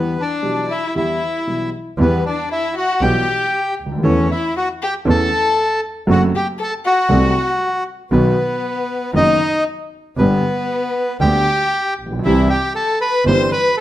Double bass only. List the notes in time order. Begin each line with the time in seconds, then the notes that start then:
1.98 E2
3.01 B1
3.79 D2
4.05 E2
5.06 E2
6.08 F#1
7.09 C2
8.11 B1
9.14 F#1
10.17 G1
11.20 D2
11.98 A#1
12.24 C2
13.25 G1